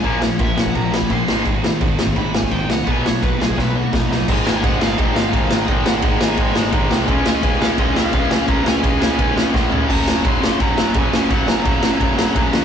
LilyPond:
<<
  \new Staff \with { instrumentName = "Lead electric guitar" } { \time 4/4 \key aes \mixolydian \tempo 4 = 171 aes''8 r8 fes''8 ges''8 bes''8 ces'''8 c'''4 | r2 ces'''8 aes''8 g''8 ges''8 | aes''8 des''8 ces''8 aes'8 ces''8 ges'8 ees'4 | r8 aes''8 ges''8 f''8 ees''8 f''4. |
ees''8 ges''4 aes''4 r4. | r8 aes''4 f''8 ees''8 f''4. | bes''8 aes''4 aes''4 r4. | bes''4 c'''4 bes''4 aes''4 |
ges''8 bes''2. r8 | }
  \new Staff \with { instrumentName = "Distorted electric guitar" } { \clef bass \time 4/4 \key aes \mixolydian <bes, f bes des'>2.~ <bes, f bes des'>8 <aes, ees aes c' ees'>8~ | <aes, ees aes c' ees'>2.~ <aes, ees aes c' ees'>8 r8 | <ces ees ges ces' ees'>1 | <aes, ees aes c' ees'>4. <aes, ees aes c' ees'>2~ <aes, ees aes c' ees'>8 |
<aes, ees aes c' ees'>4. <aes, ees aes c' ees'>2~ <aes, ees aes c' ees'>8 | <des f aes des'>4. <des f aes des'>2~ <des f aes des'>8 | <des f aes des'>4. <des f aes des'>2~ <des f aes des'>8 | <ges, des ges bes des'>4. <ges, des ges bes des'>2~ <ges, des ges bes des'>8 |
<ges, des ges bes des'>4. <ges, des ges bes des'>2~ <ges, des ges bes des'>8 | }
  \new Staff \with { instrumentName = "Distorted electric guitar" } { \clef bass \time 4/4 \key aes \mixolydian <bes, f bes>8 <bes, f>8 <bes, f>8 <bes, f>8 <bes, f>8 <bes, f>8 <bes, f>8 <aes, ees aes>8 | <aes, ees>8 <aes, ees>8 <aes, ees>8 <aes, ees>8 <aes, ees>8 <aes, ees>8 <aes, ees>8 <aes, ees>8 | <ces ges ces'>8 <ces ges>8 <ces ges>8 <ces ges>8 <ces ges>8 <ces ges>8 <ces ges>8 <ces ges>8 | <aes, ees aes>8 <aes, ees aes>8 <aes, ees aes>8 <aes, ees aes>8 <aes, ees aes>8 <aes, ees aes>8 <aes, ees aes>8 <aes, ees aes>8 |
<aes, ees aes>8 <aes, ees aes>8 <aes, ees aes>8 <aes, ees aes>8 <aes, ees aes>8 <aes, ees aes>8 <aes, ees aes>8 <aes, ees aes>8 | <des aes des'>8 <des aes des'>8 <des aes des'>8 <des aes des'>8 <des aes des'>8 <des aes des'>8 <des aes des'>8 <des aes des'>8 | <des aes des'>8 <des aes des'>8 <des aes des'>8 <des aes des'>8 <des aes des'>8 <des aes des'>8 <des aes des'>8 <des aes des'>8 | <ges, des ges>8 <ges, des ges>8 <ges, des ges>8 <ges, des ges>8 <ges, des ges>8 <ges, des ges>8 <ges, des ges>8 <ges, des ges>8 |
<ges, des ges>8 <ges, des ges>8 <ges, des ges>8 <ges, des ges>8 <ges, des ges>8 <ges, des ges>8 <ges, des ges>8 <ges, des ges>8 | }
  \new Staff \with { instrumentName = "Distorted electric guitar" } { \clef bass \time 4/4 \key aes \mixolydian <bes, f bes>8 <bes, f>8 <bes, f>8 <bes, f>8 <bes, f>8 <bes, f>8 <bes, f>8 <aes, ees aes>8 | <aes, ees>8 <aes, ees>8 <aes, ees>8 <aes, ees>8 <aes, ees>8 <aes, ees>8 <aes, ees>8 <aes, ees>8 | <ces ges ces'>8 <ces ges>8 <ces ges>8 <ces ges>8 <ces ges>8 <ces ges>8 <ces ges>8 <ces ges>8 | <aes, ees aes>8 <aes, ees aes>8 <aes, ees aes>8 <aes, ees aes>8 <aes, ees aes>8 <aes, ees aes>8 <aes, ees aes>8 <aes, ees aes>8 |
<aes, ees aes>8 <aes, ees aes>8 <aes, ees aes>8 <aes, ees aes>8 <aes, ees aes>8 <aes, ees aes>8 <aes, ees aes>8 <aes, ees aes>8 | <des aes des'>8 <des aes des'>8 <des aes des'>8 <des aes des'>8 <des aes des'>8 <des aes des'>8 <des aes des'>8 <des aes des'>8 | <des aes des'>8 <des aes des'>8 <des aes des'>8 <des aes des'>8 <des aes des'>8 <des aes des'>8 <des aes des'>8 <des aes des'>8 | <ges, des ges>8 <ges, des ges>8 <ges, des ges>8 <ges, des ges>8 <ges, des ges>8 <ges, des ges>8 <ges, des ges>8 <ges, des ges>8 |
<ges, des ges>8 <ges, des ges>8 <ges, des ges>8 <ges, des ges>8 <ges, des ges>8 <ges, des ges>8 <ges, des ges>8 <ges, des ges>8 | }
  \new Staff \with { instrumentName = "Picked electric bass" } { \clef bass \time 4/4 \key aes \mixolydian bes,,4 bes,,8 bes,,8 bes,,4 bes,,8 aes,,8 | aes,,4 aes,,8 aes,,8 aes,,4 aes,,8 c,8 | ces,4 ces,8 ces,8 ces,4 ces,8 ces,8 | aes,,8 aes,,8 aes,,8 aes,,8 aes,,8 aes,,8 aes,,8 aes,,8 |
aes,,8 aes,,8 aes,,8 aes,,8 aes,,4 aes,,8 c,8 | des,8 des,8 des,8 des,8 des,8 des,8 des,8 des,8 | des,8 des,8 des,8 des,8 des,4 des,8 des,8 | ges,,8 ges,,8 ges,,8 ges,,8 ges,,8 ges,,8 ges,,8 ges,,8 |
ges,,8 ges,,8 ges,,8 ges,,8 ges,,4 ges,,8 ees,8 | }
  \new DrumStaff \with { instrumentName = "Drums" } \drummode { \time 4/4 <cymc bd>8 sn8 <cymc bd>8 sn16 bd16 <cymc bd>8 sn16 bd16 <cymc bd>8 sn8 | <cymc bd>8 sn8 <cymc bd>8 sn16 bd16 <cymc bd>8 sn16 bd16 <cymc bd>8 sn8 | <cymc bd>8 sn8 <cymc bd>8 sn16 bd16 <bd sn>4 <bd sn>8 sn8 | <cymc bd>8 sn8 <bd cymr>8 sn8 <bd cymr>8 sn8 <bd cymr>8 sn8 |
<bd cymr>8 sn8 <bd cymr>8 sn8 <bd cymr>8 sn8 <bd cymr>8 sn8 | <bd cymr>8 sn8 <bd cymr>8 sn8 <bd cymr>8 sn8 <bd cymr>8 sn8 | <bd cymr>8 sn8 <bd cymr>8 sn8 <bd cymr>8 sn8 <bd sn>8 tomfh8 | <cymc bd>8 sn8 <bd cymr>8 sn8 <bd cymr>8 sn8 <bd cymr>8 sn8 |
<bd cymr>8 sn8 <bd cymr>8 sn8 <bd cymr>8 sn8 <bd cymr>8 sn8 | }
>>